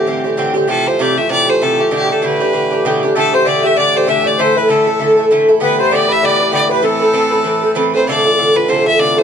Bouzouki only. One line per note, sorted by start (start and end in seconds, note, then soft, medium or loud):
0.07 0.24 G2 medium
0.07 0.25 D3 medium
0.07 0.24 C4 medium
0.07 0.23 G4 medium
0.24 0.37 D3 soft
0.24 0.37 C4 soft
0.24 0.37 G4 medium
0.37 0.55 G2 medium
0.37 0.55 D3 medium
0.37 0.54 C4 medium
0.37 0.53 G4 medium
0.54 0.68 D3 medium
0.54 0.68 C4 medium
0.54 0.68 G4 medium
0.67 0.86 C3 medium
0.67 0.86 F3 medium
0.67 0.86 A3 medium
0.67 0.85 G4 medium
0.86 0.99 F3 soft
0.86 0.99 A3 soft
0.86 0.99 G4 soft
0.99 1.17 C3 medium
0.99 1.17 F3 medium
0.99 1.16 A3 medium
0.99 1.15 G4 medium
1.16 1.28 F3 soft
1.16 1.29 A3 soft
1.16 1.30 G4 soft
1.29 1.47 C3 medium
1.29 1.47 F3 medium
1.29 1.47 A3 medium
1.29 1.46 G4 medium
1.47 1.61 F3 soft
1.47 1.61 A3 soft
1.47 1.60 G4 soft
1.62 1.79 C3 medium
1.62 1.79 F3 medium
1.62 1.79 A3 medium
1.62 1.77 G4 medium
1.78 1.91 F3 soft
1.78 1.92 A3 soft
1.78 1.91 G4 medium
1.91 2.09 B2 medium
1.91 2.09 D3 medium
1.91 2.09 D4 medium
1.91 2.08 G4 medium
2.09 2.21 D3 soft
2.09 2.22 D4 soft
2.09 2.22 G4 soft
2.22 2.40 B2 medium
2.22 2.40 D3 medium
2.22 2.40 D4 medium
2.22 2.39 G4 medium
2.40 2.52 D3 soft
2.40 2.53 D4 medium
2.40 2.53 G4 soft
2.53 2.71 B2 soft
2.53 2.71 D3 medium
2.53 2.71 D4 soft
2.53 2.69 G4 medium
2.71 2.85 D3 soft
2.71 2.85 D4 soft
2.71 2.84 G4 soft
2.85 3.02 B2 medium
2.85 3.03 D3 medium
2.85 3.03 D4 medium
2.85 3.02 G4 medium
3.03 3.15 D3 soft
3.03 3.16 D4 medium
3.03 3.15 G4 medium
3.15 3.33 B2 medium
3.15 3.33 D3 medium
3.15 3.33 A3 medium
3.15 3.31 G4 medium
3.33 3.44 D3 soft
3.33 3.45 A3 soft
3.33 3.46 G4 soft
3.45 3.63 B2 medium
3.45 3.63 D3 medium
3.45 3.64 A3 medium
3.45 3.63 G4 medium
3.64 3.76 D3 soft
3.64 3.77 A3 soft
3.64 3.77 G4 soft
3.76 3.94 B2 soft
3.76 3.95 D3 medium
3.76 3.95 A3 medium
3.76 3.94 G4 soft
3.95 4.06 D3 soft
3.95 4.07 A3 soft
3.95 4.07 G4 soft
4.07 4.25 B2 medium
4.07 4.25 D3 medium
4.07 4.24 A3 medium
4.07 4.23 G4 medium
4.24 4.38 D3 soft
4.24 4.38 A3 soft
4.24 4.37 G4 soft
4.39 4.56 D3 medium
4.39 4.56 A3 medium
4.39 4.55 E4 medium
4.39 4.54 A4 medium
4.55 4.68 A3 soft
4.55 4.69 E4 soft
4.55 4.69 A4 soft
4.69 4.86 D3 medium
4.69 4.87 A3 medium
4.69 4.87 E4 medium
4.69 4.86 A4 medium
4.87 4.99 A3 soft
4.87 4.99 E4 soft
4.87 5.00 A4 soft
4.99 5.17 D3 medium
4.99 5.18 A3 medium
4.99 5.18 E4 medium
4.99 5.16 A4 medium
5.17 5.30 A3 soft
5.17 5.31 E4 soft
5.17 5.30 A4 soft
5.31 5.48 D3 medium
5.31 5.49 A3 medium
5.31 5.48 E4 medium
5.31 5.47 A4 medium
5.48 5.60 A3 soft
5.48 5.61 E4 soft
5.48 5.61 A4 medium
5.60 5.78 D3 medium
5.60 5.79 B3 medium
5.60 5.79 G4 medium
5.60 5.77 B4 medium
5.79 5.91 B3 soft
5.79 5.91 G4 soft
5.79 5.92 B4 soft
5.91 6.09 D3 medium
5.91 6.10 B3 medium
5.91 6.08 G4 medium
5.91 6.07 B4 medium
6.08 6.22 B3 soft
6.08 6.22 G4 soft
6.08 6.22 B4 soft
6.22 6.40 D3 medium
6.22 6.40 B3 medium
6.22 6.39 G4 medium
6.22 6.38 B4 medium
6.40 6.51 B3 soft
6.40 6.51 G4 soft
6.40 6.52 B4 soft
6.52 6.70 D3 medium
6.52 6.70 B3 medium
6.52 6.70 G4 medium
6.52 6.68 B4 medium
6.69 6.82 B3 soft
6.69 6.82 G4 soft
6.69 6.82 B4 medium
6.82 7.01 E3 medium
6.82 7.01 C4 medium
6.82 7.01 A4 medium
6.82 6.99 B4 medium
7.00 7.12 C4 soft
7.00 7.13 A4 soft
7.00 7.13 B4 soft
7.13 7.32 E3 medium
7.13 7.32 C4 medium
7.13 7.31 A4 medium
7.13 7.30 B4 medium
7.31 7.44 C4 soft
7.31 7.44 A4 soft
7.31 7.45 B4 medium
7.44 7.63 E3 medium
7.44 7.63 C4 medium
7.44 7.62 A4 medium
7.44 7.60 B4 medium
7.62 7.75 C4 soft
7.62 7.75 A4 soft
7.62 7.75 B4 soft
7.75 7.94 E3 medium
7.75 7.94 C4 medium
7.75 7.93 A4 medium
7.75 7.92 B4 medium
7.94 8.08 C4 soft
7.94 8.07 A4 medium
7.94 8.07 B4 medium
8.08 8.25 C3 medium
8.08 8.25 D3 medium
8.08 8.25 F4 medium
8.08 8.23 A4 medium
8.25 8.37 D3 soft
8.25 8.37 F4 soft
8.25 8.38 A4 soft
8.38 8.56 C3 soft
8.38 8.56 D3 soft
8.38 8.55 F4 medium
8.38 8.54 A4 medium
8.55 8.68 D3 soft
8.55 8.68 F4 soft
8.55 8.68 A4 soft
8.68 8.86 C3 medium
8.68 8.86 D3 medium
8.68 8.85 F4 medium
8.68 8.84 A4 medium
8.85 8.98 D3 soft
8.85 8.99 F4 soft
8.85 8.99 A4 soft
8.98 9.17 C3 medium
8.98 9.17 D3 medium
8.98 9.16 F4 medium
8.98 9.15 A4 medium
9.17 9.23 D3 soft
9.17 9.23 F4 soft
9.17 9.23 A4 soft